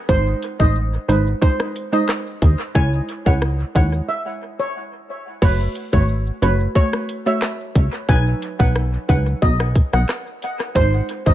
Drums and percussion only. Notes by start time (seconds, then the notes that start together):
0.09 kick, shaker
0.27 shaker
0.42 closed hi-hat, shaker
0.60 kick, shaker
0.75 shaker
0.93 shaker
1.09 closed hi-hat, shaker
1.27 shaker
1.42 kick, shaker
1.60 cross-stick, shaker
1.76 closed hi-hat, shaker
1.93 shaker
2.09 cross-stick, clap, shaker
2.27 shaker
2.42 kick, closed hi-hat, shaker
2.60 shaker
2.75 kick, shaker
2.93 shaker
3.09 closed hi-hat, shaker
3.26 kick, shaker
3.42 cross-stick, shaker
3.60 shaker
3.76 kick, closed hi-hat, shaker
3.93 shaker
5.42 kick, crash, shaker
5.60 shaker
5.75 closed hi-hat, shaker
5.93 kick, shaker
6.08 shaker
6.27 shaker
6.42 closed hi-hat, shaker
6.60 shaker
6.75 kick, shaker
6.93 cross-stick, shaker
7.09 closed hi-hat, shaker
7.26 shaker
7.42 cross-stick, clap, shaker
7.60 shaker
7.75 kick, closed hi-hat, shaker
7.93 shaker
8.09 kick, shaker
8.27 shaker
8.42 closed hi-hat, shaker
8.60 kick, shaker
8.75 cross-stick, shaker
8.93 shaker
9.09 kick, closed hi-hat, shaker
9.27 shaker
9.42 kick, shaker
9.60 cross-stick, shaker
9.76 kick, closed hi-hat, shaker
9.93 cross-stick, shaker
10.09 cross-stick, clap, shaker
10.27 shaker
10.42 closed hi-hat, shaker
10.60 cross-stick, shaker
10.76 kick, shaker
10.93 shaker
11.09 closed hi-hat, shaker
11.26 kick, shaker